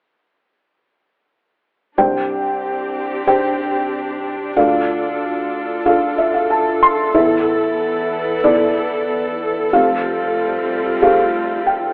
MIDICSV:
0, 0, Header, 1, 3, 480
1, 0, Start_track
1, 0, Key_signature, 0, "major"
1, 0, Tempo, 645161
1, 1476, Time_signature, 4, 2, 24, 8
1, 8878, End_track
2, 0, Start_track
2, 0, Title_t, "Felt piano"
2, 0, Program_c, 0, 0
2, 1471, Note_on_c, 0, 62, 57
2, 1472, Note_on_c, 0, 67, 54
2, 1473, Note_on_c, 0, 36, 51
2, 1474, Note_on_c, 0, 48, 51
2, 1474, Note_on_c, 0, 72, 55
2, 1475, Note_on_c, 0, 79, 69
2, 1597, Control_c, 0, 64, 127
2, 2375, Note_off_c, 0, 62, 0
2, 2376, Note_off_c, 0, 67, 0
2, 2377, Note_off_c, 0, 72, 0
2, 2377, Note_off_c, 0, 79, 0
2, 2434, Note_on_c, 0, 62, 55
2, 2434, Note_on_c, 0, 67, 58
2, 2436, Note_on_c, 0, 72, 53
2, 2437, Note_on_c, 0, 79, 62
2, 3337, Note_off_c, 0, 62, 0
2, 3337, Note_off_c, 0, 67, 0
2, 3338, Note_off_c, 0, 72, 0
2, 3339, Note_off_c, 0, 79, 0
2, 3367, Note_off_c, 0, 36, 0
2, 3367, Note_off_c, 0, 48, 0
2, 3396, Note_on_c, 0, 38, 57
2, 3396, Note_on_c, 0, 50, 51
2, 3396, Note_on_c, 0, 62, 63
2, 3396, Note_on_c, 0, 65, 53
2, 3396, Note_on_c, 0, 69, 53
2, 3398, Note_on_c, 0, 77, 66
2, 3406, Control_c, 0, 64, 0
2, 3553, Control_c, 0, 64, 127
2, 4298, Note_off_c, 0, 65, 0
2, 4298, Note_off_c, 0, 69, 0
2, 4299, Note_off_c, 0, 62, 0
2, 4299, Note_off_c, 0, 77, 0
2, 4357, Note_on_c, 0, 62, 59
2, 4357, Note_on_c, 0, 65, 54
2, 4359, Note_on_c, 0, 69, 55
2, 4360, Note_on_c, 0, 77, 63
2, 4598, Note_on_c, 0, 76, 51
2, 4708, Note_off_c, 0, 77, 0
2, 4710, Note_off_c, 0, 76, 0
2, 4719, Note_on_c, 0, 77, 51
2, 4830, Note_off_c, 0, 77, 0
2, 4838, Note_on_c, 0, 81, 59
2, 5062, Note_off_c, 0, 81, 0
2, 5079, Note_on_c, 0, 84, 57
2, 5259, Note_off_c, 0, 62, 0
2, 5259, Note_off_c, 0, 65, 0
2, 5260, Note_off_c, 0, 69, 0
2, 5288, Note_off_c, 0, 38, 0
2, 5288, Note_off_c, 0, 50, 0
2, 5302, Note_off_c, 0, 84, 0
2, 5314, Note_on_c, 0, 59, 63
2, 5314, Note_on_c, 0, 64, 57
2, 5315, Note_on_c, 0, 52, 53
2, 5316, Note_on_c, 0, 40, 51
2, 5317, Note_on_c, 0, 69, 56
2, 5318, Note_on_c, 0, 76, 67
2, 5327, Control_c, 0, 64, 0
2, 5461, Control_c, 0, 64, 127
2, 6217, Note_off_c, 0, 64, 0
2, 6218, Note_off_c, 0, 59, 0
2, 6219, Note_off_c, 0, 69, 0
2, 6219, Note_off_c, 0, 76, 0
2, 6278, Note_on_c, 0, 59, 65
2, 6278, Note_on_c, 0, 64, 61
2, 6279, Note_on_c, 0, 69, 56
2, 6280, Note_on_c, 0, 74, 74
2, 7179, Note_off_c, 0, 59, 0
2, 7179, Note_off_c, 0, 64, 0
2, 7179, Note_off_c, 0, 69, 0
2, 7180, Note_off_c, 0, 74, 0
2, 7207, Note_off_c, 0, 40, 0
2, 7207, Note_off_c, 0, 52, 0
2, 7238, Note_on_c, 0, 41, 54
2, 7239, Note_on_c, 0, 60, 60
2, 7240, Note_on_c, 0, 67, 57
2, 7240, Note_on_c, 0, 69, 58
2, 7241, Note_on_c, 0, 29, 56
2, 7241, Note_on_c, 0, 77, 69
2, 7248, Control_c, 0, 64, 0
2, 7386, Control_c, 0, 64, 127
2, 8139, Note_off_c, 0, 60, 0
2, 8139, Note_off_c, 0, 67, 0
2, 8139, Note_off_c, 0, 69, 0
2, 8140, Note_off_c, 0, 77, 0
2, 8197, Note_on_c, 0, 60, 62
2, 8200, Note_on_c, 0, 67, 59
2, 8202, Note_on_c, 0, 69, 57
2, 8203, Note_on_c, 0, 77, 72
2, 8679, Note_on_c, 0, 79, 58
2, 8878, Note_off_c, 0, 29, 0
2, 8878, Note_off_c, 0, 41, 0
2, 8878, Note_off_c, 0, 60, 0
2, 8878, Note_off_c, 0, 67, 0
2, 8878, Note_off_c, 0, 69, 0
2, 8878, Note_off_c, 0, 77, 0
2, 8878, Note_off_c, 0, 79, 0
2, 8878, End_track
3, 0, Start_track
3, 0, Title_t, "String section"
3, 0, Program_c, 1, 48
3, 1479, Note_on_c, 1, 60, 60
3, 1479, Note_on_c, 1, 62, 52
3, 1480, Note_on_c, 1, 67, 67
3, 3380, Note_off_c, 1, 60, 0
3, 3381, Note_off_c, 1, 67, 0
3, 3398, Note_on_c, 1, 65, 52
3, 3399, Note_on_c, 1, 69, 69
3, 5291, Note_off_c, 1, 62, 0
3, 5300, Note_off_c, 1, 65, 0
3, 5321, Note_on_c, 1, 64, 59
3, 5323, Note_on_c, 1, 52, 60
3, 5323, Note_on_c, 1, 59, 59
3, 7221, Note_off_c, 1, 52, 0
3, 7221, Note_off_c, 1, 59, 0
3, 7221, Note_off_c, 1, 64, 0
3, 7240, Note_on_c, 1, 57, 56
3, 7241, Note_on_c, 1, 65, 61
3, 7242, Note_on_c, 1, 55, 61
3, 7242, Note_on_c, 1, 60, 54
3, 8878, Note_off_c, 1, 55, 0
3, 8878, Note_off_c, 1, 57, 0
3, 8878, Note_off_c, 1, 60, 0
3, 8878, Note_off_c, 1, 65, 0
3, 8878, Note_off_c, 1, 69, 0
3, 8878, End_track
0, 0, End_of_file